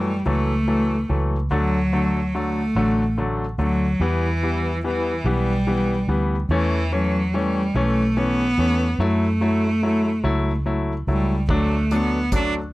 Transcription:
Already playing: F#2 E3 F#3 G3 A3
0.26 C#2 E3 F#3 A3
0.68 E3 F#3 A3
1.09 C#2 E3 F#3 A3
1.51 D2 D3 F#3 A3
1.93 D3 F#3 A3
2.35 D3 F#3 A3
2.75 A1 D3 F#3 A3
3.18 D3 F#3 A3
3.58 D2 D3 F#3 A3
4.00 E2 E3 G3 B3
4.43 E3 G3 B3
4.84 E3 G3 B3
5.24 B1 E3 G3 B3
5.67 E3 G3 B3
6.08 D2 E3 G3 B3
6.49 E2 E3 A3 C#4
6.92 E3 F#3 A3 C#4
7.34 E3 G3 A3 C#4
7.75 B1 E3 A3 C#4
8.17 E3 A3 B3 C#4
8.58 E2 E3 A3 C#4
8.99 F#2 F#3 A3 E4
9.41 F#3 A3 E4
9.83 F#3 A3 E4
10.24 C#2 F#3 A3 E4
10.66 F#3 A3 E4
11.07 C#2 F#3 G3 A3 E4
11.49 D2 F#3 A3 D4, kick, crash
11.91 F#3 A3 B3 D4, closed hi-hat
12.32 F#3 A3 D4, kick, closed hi-hat

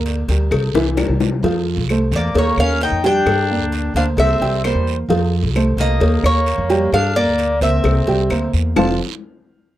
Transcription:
Already playing: D2 A#3 A#4 D5
0.06 cowbell, short guiro
0.28 D2 G3 G4 A#4, cowbell, short guiro
0.51 C2, cowbell, long guiro, claves
0.74 C2 E3 E4 E5, cowbell, high bongo
0.97 G3 G4 A#4, cowbell, low bongo, short guiro, claves
1.08 C2
1.20 low bongo, short guiro
1.43 F2 F3 F4 F5, cowbell, long guiro
1.77 C2
1.89 A3 A4 C5, cowbell, short guiro, claves
2.12 E2, cowbell, short guiro
2.16 A#3 D5
2.34 D#2 A#3 A#4 C#5, cowbell, long guiro
2.57 D#2 A#3 C#4 A#4 C#5 F5, claves
2.81 D#4 G5, cowbell, short guiro
2.92 F2
3.04 G3 D4 G4 G5, cowbell, short guiro
3.26 G2, cowbell, long guiro, claves
3.50 A#3 A#4 D5
3.60 D2
3.72 cowbell, short guiro
3.94 D2 A#3 D4 A#4 C5 F5, cowbell, short guiro
4.17 C2 C4 E5, cowbell, long guiro, claves
4.40 C2 G3 G4 G5, cowbell
4.64 G3 A#3 A#4 C5, cowbell, short guiro, claves
4.74 E2
4.87 short guiro
5.09 F2 F3 F4 F5, cowbell, long guiro
5.43 C2
5.55 A3 A4 C5, cowbell, short guiro, claves
5.77 C2 A#3 D#5, cowbell, short guiro
6.00 D#2 A#3 A#4 C#5, cowbell, long guiro
6.23 D#2 A#3 A#4 C#5, claves
6.46 cowbell, short guiro
6.58 F2
6.70 G3 G4 G5, cowbell, short guiro
6.92 G2 D4 F5, cowbell, long guiro, claves
7.16 A#3 A#4 D5
7.27 D2
7.38 cowbell, short guiro
7.61 C#2 A#3 C4 A#4 C5 E5, cowbell, short guiro
7.84 C2, cowbell, long guiro, claves
8.07 C2 G3 G4 G5, cowbell
8.30 D2 A#3 A#4 C5, cowbell, short guiro, claves
8.53 E2, short guiro
8.76 F1 F3 C4 F4 A4 C5 F5 A5, low bongo, long guiro, claves

